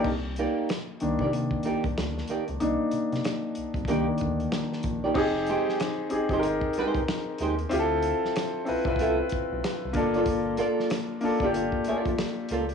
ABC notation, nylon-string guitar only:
X:1
M:4/4
L:1/16
Q:"Swing 16ths" 1/4=94
K:Clyd
V:1 name="Nylon-string guitar"
z2 [_B,_EGd]2 z3 [B,EGd] z2 [B,EGd] z3 [B,EGd] z | z8 [_B,_EGd] z6 [B,EGd] | z2 [_A,_EGc]2 z3 [A,EGc] z2 [A,EGc] z3 [A,EGc] z | z8 [C=FAe] z6 [_B,FAd] |
z2 [_B,=FAd]2 z3 [B,FAd] z2 [B,FAd] z3 [B,FAd] z |]